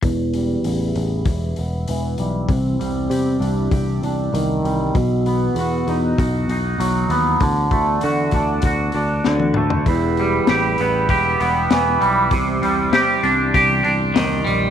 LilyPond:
<<
  \new Staff \with { instrumentName = "Transistor combo organ" } { \time 4/4 \key e \minor \tempo 4 = 98 << { r1 | r1 | r1 | r1 |
<b' e'' b''>1 | <d'' c'''>1 | } \\ { r1 | r1 | r1 | r1 |
g'1~ | g'1 | } >> }
  \new Staff \with { instrumentName = "Clean electric guitar" } { \time 4/4 \key e \minor e,8 g8 e'8 b8 e'8 b8 e8 g8 | c8 g8 g'8 d'8 g'8 d'8 ees8 g8 | b,8 b8 fis'8 dis'8 fis'8 dis'8 fis8 b8 | d8 a8 fis'8 d'8 fis'8 d'8 d8 a8 |
e,8 g8 g'8 b8 g'8 b8 e8 g8 | c8 g8 g'8 d'8 g'8 d'8 ees8 g8 | }
  \new Staff \with { instrumentName = "Synth drone" } { \clef bass \time 4/4 \key e \minor e,1~ | e,1~ | e,1~ | e,1 |
e,1~ | e,1 | }
  \new Staff \with { instrumentName = "Picked electric bass" } { \clef bass \time 4/4 \key e \minor e,,4 a,,8 a,,8 e,,8 e,,8 e,,8 b,,8 | c,8 c,8 c8 c,8 c,8 c,8 c,8 c,8 | b,,4 e,8 e,8 b,,8 b,,8 b,,8 dis,8 | d,8 d,8 d8 d,8 d,8 d,8 d,8 d,8 |
e,,4 a,,8 a,,8 e,,8 e,,8 e,,8 b,,8 | c,8 c,8 c8 c,8 c,8 c,8 c,8 ais,,8 | }
  \new DrumStaff \with { instrumentName = "Drums" } \drummode { \time 4/4 <hho bd>8 hho8 hho8 hho8 <hho bd>8 hho8 hho8 hho8 | <hho bd>8 hho8 hho8 hho8 <hho bd>8 hho8 hho8 hho8 | <hho bd>8 hho8 hho8 hho8 <hho bd>8 hho8 hho8 hho8 | <hho bd>8 <hho bd>8 hho8 <hho bd>8 <hho bd>8 hho8 sn16 tommh16 toml16 tomfh16 |
<hho bd>8 hho8 <hho sn>8 hho8 <hho bd>8 hho8 <hho sn>8 hho8 | <hho bd>8 hho8 <hho sn>8 hho8 <hho bd>8 hho8 <hho sn>8 hho8 | }
>>